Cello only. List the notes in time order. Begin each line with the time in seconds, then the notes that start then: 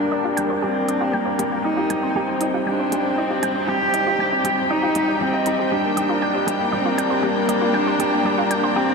Already playing: D4
0.56 D4
0.63 C4
1.15 A#3
1.65 D#4
2.68 D4
3.17 C4
3.69 G4
4.70 D#4
5.20 C4
5.71 D4
6.75 C4
7.24 A#3
7.74 D4
8.75 C4